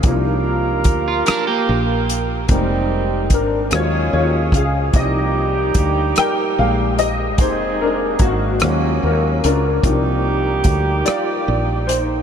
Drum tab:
HH |x-xx-x|x-xx-x|x-xx-x|x-xx-x|
SD |---r--|---r--|---r--|---r--|
BD |o-o---|o-o--o|o-o---|o-o---|

HH |x-xx-x|
SD |---r--|
BD |o-o---|